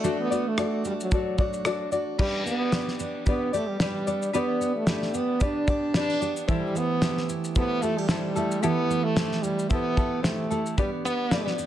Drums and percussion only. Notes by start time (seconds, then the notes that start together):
0.04 shaker
0.32 shaker
0.58 cross-stick, shaker
0.85 shaker
1.00 shaker
1.11 kick, shaker
1.38 kick, shaker
1.53 shaker
1.65 cross-stick, shaker
1.92 shaker
2.19 kick, crash
2.47 shaker
2.72 snare, shaker
2.88 snare
2.99 shaker
3.26 kick, shaker
3.54 shaker
3.80 snare, shaker
4.07 shaker
4.22 shaker
4.34 shaker
4.61 shaker
4.87 snare, shaker
5.02 snare
5.14 shaker
5.41 kick, shaker
5.68 kick, shaker
5.94 snare, shaker
6.22 shaker
6.37 shaker
6.49 kick, shaker
6.76 shaker
7.02 snare, shaker
7.17 snare
7.29 shaker
7.44 shaker
7.55 kick, shaker
7.82 shaker
8.09 snare, shaker
8.36 shaker
8.51 shaker
8.63 shaker
8.91 shaker
9.17 snare, shaker
9.32 snare
9.44 shaker
9.59 shaker
9.70 kick, shaker
9.97 kick, shaker
10.24 snare, shaker
10.51 shaker
10.66 shaker
10.78 kick, shaker
11.06 shaker
11.31 snare, shaker
11.47 snare
11.58 shaker